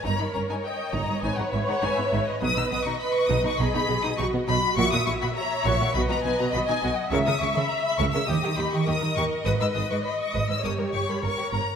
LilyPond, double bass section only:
\new Staff \with { instrumentName = "Double bass section" } { \clef bass \time 4/4 \key gis \minor \tempo 4 = 102 g,,16 r16 g,,16 r8. g,,16 r16 gis,,16 r16 gis,,16 r16 gis,,16 r16 gis,,16 r16 | b,,16 r16 b,,16 r8. b,,16 r16 b,,16 r16 b,,16 r16 b,,16 r16 b,,16 r16 | ais,,16 r16 ais,,16 r8. ais,,16 r16 b,,16 r16 b,,16 r16 b,,16 r16 b,,16 r16 | cis,16 r16 cis,16 r8. cis,16 r16 dis,16 r16 dis,16 r16 dis,16 r16 dis,16 r16 |
gis,,16 r16 gis,,16 r8. gis,,16 r16 g,,16 r16 g,,16 r16 g,,16 r16 g,,16 r16 | }